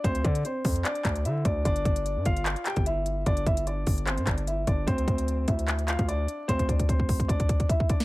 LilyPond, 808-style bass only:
\new Staff \with { instrumentName = "808-style bass" } { \clef bass \time 4/4 \key d \minor \tempo 4 = 149 d,8 d8 r8 f,8 r8 d,8 d8 d,8 | g,,8 g,,8. g,16 g,,8. r8 g,,4~ g,,16 | g,,8 g,,4 g,,8. g,16 g,,4 g,,8 | d,8 d,4 d,4~ d,16 d,8. r8 |
d,2. r4 | }